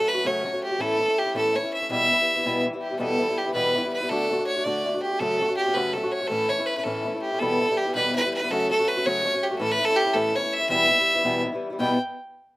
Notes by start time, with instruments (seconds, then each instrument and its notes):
Already playing: steel-string acoustic guitar F#4
0.00 steel-string acoustic guitar F#3 A3 C#4
0.08 fiddle B4
0.14 steel-string acoustic guitar F#3 A3 C#4 F#4
0.24 steel-string acoustic guitar F#2 C#3 F#3 A3 C#4 F#4, fiddle C#5
0.44 steel-string acoustic guitar F#3 A3 C#4 F#4
0.53 steel-string acoustic guitar F#3 A3 C#4 F#4
0.64 fiddle G4
0.70 steel-string acoustic guitar F#3 A3 C#4 F#4
0.78 steel-string acoustic guitar A2 E3 A3 C#4 E4, fiddle A4
0.98 steel-string acoustic guitar E3 A3 C#4 E4
1.08 steel-string acoustic guitar A3 C#4 E4
1.19 fiddle G4
1.25 steel-string acoustic guitar A3 C#4 E4
1.34 steel-string acoustic guitar A2 E3 A3 C#4 E4, fiddle A4
1.54 steel-string acoustic guitar E3 A3 C#4 E4, fiddle C#5
1.63 steel-string acoustic guitar A3 C#4 E4
1.73 fiddle E5
1.80 steel-string acoustic guitar A3 C#4 E4
1.89 steel-string acoustic guitar E2 B2 E3 G3 B3 E4, fiddle E5
2.10 steel-string acoustic guitar E3 G3 B3 E4
2.19 steel-string acoustic guitar E3 G3 B3 E4
2.35 steel-string acoustic guitar E3 G3 B3 E4
2.45 steel-string acoustic guitar E2 B2 E3 G3 B3 E4
2.64 steel-string acoustic guitar E3 G3 B3 E4
2.73 steel-string acoustic guitar E3 G3 B3 E4
2.81 fiddle G4
2.90 steel-string acoustic guitar E3 G3 B3 E4
2.99 steel-string acoustic guitar E2 B2 E3 G3 B3 E4, fiddle A4
3.19 steel-string acoustic guitar E3 G3 B3 E4
3.28 steel-string acoustic guitar E3 G3 B3 E4
3.38 fiddle G4
3.45 steel-string acoustic guitar E3 G3 B3 E4
3.54 steel-string acoustic guitar E2 B2 E3 G3 B3 E4, fiddle B4
3.75 steel-string acoustic guitar E3 G3 B3 E4
3.84 steel-string acoustic guitar E3 G3 B3 E4
3.93 fiddle B4
4.01 steel-string acoustic guitar E3 G3 B3 E4
4.09 steel-string acoustic guitar D3 A3 D4 F#4, fiddle A4
4.30 steel-string acoustic guitar D3 A3 D4 F#4
4.39 steel-string acoustic guitar A3 D4 F#4
4.47 fiddle C#5
4.56 steel-string acoustic guitar A3 D4 F#4
4.64 steel-string acoustic guitar D3 A3 D4 F#4, fiddle D5
4.85 steel-string acoustic guitar D3 A3 D4 F#4
4.94 steel-string acoustic guitar A3 D4 F#4
5.02 fiddle G4
5.11 steel-string acoustic guitar A3 D4 F#4
5.19 steel-string acoustic guitar F#2 C#3 F#3 A3 C#4 F#4, fiddle A4
5.39 steel-string acoustic guitar F#3 A3 C#4 F#4
5.48 steel-string acoustic guitar F#3 A3 C#4 F#4
5.57 fiddle G4
5.66 steel-string acoustic guitar F#3 A3 C#4 F#4
5.74 steel-string acoustic guitar F#2 C#3 F#3 A3 C#4 F#4, fiddle B4
5.93 steel-string acoustic guitar F#3 A3 C#4, fiddle A4
5.98 steel-string acoustic guitar F#4
6.03 steel-string acoustic guitar F#3 A3 C#4 F#4
6.12 fiddle C#5
6.22 steel-string acoustic guitar F#3 A3 C#4 F#4
6.27 steel-string acoustic guitar A2 E3 A3, fiddle A4
6.32 steel-string acoustic guitar C#4 E4
6.49 steel-string acoustic guitar E3 A3 C#4 E4, fiddle C#5
6.59 steel-string acoustic guitar A3 C#4 E4
6.66 fiddle B4
6.77 steel-string acoustic guitar A3 C#4 E4, fiddle B4
6.83 steel-string acoustic guitar A2 E3 A3 C#4 E4, fiddle A4
7.04 steel-string acoustic guitar E3 A3 C#4 E4
7.14 steel-string acoustic guitar A3 C#4 E4
7.22 fiddle G4
7.32 steel-string acoustic guitar A3 C#4 E4
7.39 steel-string acoustic guitar E2 B2 E3 G3 B3 E4, fiddle A4
7.60 steel-string acoustic guitar E3 B3 E4
7.68 steel-string acoustic guitar E3 G3 B3 E4
7.77 fiddle G4
7.86 steel-string acoustic guitar E3 G3 B3 E4
7.95 steel-string acoustic guitar E2 B2 E3 G3 B3 E4, fiddle B4
8.14 steel-string acoustic guitar E3 G3 B3 E4, fiddle B4
8.24 steel-string acoustic guitar E3 G3 B3 E4
8.34 fiddle B4
8.42 steel-string acoustic guitar E3 G3 B3 E4
8.50 steel-string acoustic guitar F#2 C#3 F#3 A3 C#4 F#4, fiddle A4
8.71 steel-string acoustic guitar F#3 A3 C#4 F#4, fiddle A4
8.79 steel-string acoustic guitar F#3 A3 C#4 F#4
8.88 fiddle B4
8.97 steel-string acoustic guitar F#3 A3 C#4 F#4
9.05 steel-string acoustic guitar F#2 C#3 F#3 A3 C#4 F#4, fiddle C#5
9.24 steel-string acoustic guitar F#3 A3 C#4 F#4
9.33 steel-string acoustic guitar F#3 A3 C#4 F#4
9.43 fiddle G4
9.51 steel-string acoustic guitar F#3 A3 C#4 F#4
9.59 steel-string acoustic guitar A2 E3 A3 C#4 E4, fiddle A4
9.72 fiddle B4
9.80 steel-string acoustic guitar E3 A3 C#4 E4
9.85 steel-string acoustic guitar E4, fiddle A4
9.90 steel-string acoustic guitar A3 C#4
9.96 fiddle G4
10.05 steel-string acoustic guitar A3 C#4 E4
10.14 steel-string acoustic guitar A2 E3 A3 C#4 E4, fiddle A4
10.35 steel-string acoustic guitar E3 A3 C#4 E4, fiddle C#5
10.43 steel-string acoustic guitar A3 C#4 E4
10.53 fiddle E5
10.59 steel-string acoustic guitar A3 C#4 E4
10.69 steel-string acoustic guitar E2 B2 E3 G3 B3 E4, fiddle E5
10.90 steel-string acoustic guitar E3 G3 B3 E4
10.98 steel-string acoustic guitar E3 G3 B3 E4
11.15 steel-string acoustic guitar E3 G3 B3 E4
11.24 steel-string acoustic guitar E2 B2 E3 G3 B3 E4
11.44 steel-string acoustic guitar E3 G3 B3 E4
11.52 steel-string acoustic guitar E3 G3 B3 E4
11.70 steel-string acoustic guitar E3 G3 B3 E4
11.79 steel-string acoustic guitar E2 B2 E3 G3 B3 E4, fiddle G5